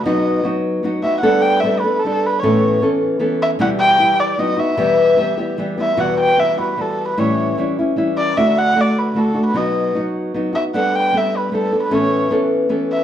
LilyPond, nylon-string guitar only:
\new Staff \with { instrumentName = "Nylon-string guitar" } { \time 3/4 \key e \minor \tempo 4 = 152 <b, fis b dis' fis'>4 <fis b dis' fis'>4 <fis b dis' fis'>8 <b dis' fis'>8 | <g b d' a'>4 <g b d' a'>8 <b d' a'>8 <g b d' a'>4 | <a, e b cis' a'>4 <e b cis' a'>4 <e b cis' a'>4 | <b, e g e' g'>4 <e g e' g'>4 <fis b dis' fis'>8 <b dis' fis'>8 |
<e, b, e g b g'>4 <e g b g'>8 <e g b g'>8 <e g b g'>8 <e g b g'>8 | <e, b, e g b fis'>4 <e g b fis'>8 <e g b fis'>8 <e g b fis'>4 | <a, e g cis' e'>4 <e g cis' e'>8 <g cis' e'>8 <e g cis' e'>4 | <d a d' fis'>4 <d a d' fis'>4 <d a d' fis'>8 <a d' fis'>8 |
<b, fis b dis' fis'>4 <fis b dis' fis'>4 <fis b dis' fis'>8 <b dis' fis'>8 | <g b d' a'>4 <g b d' a'>4 <g b d' a'>8 <b d' a'>8 | <a, e b cis' a'>4 <e b cis' a'>4 <e b cis' a'>4 | }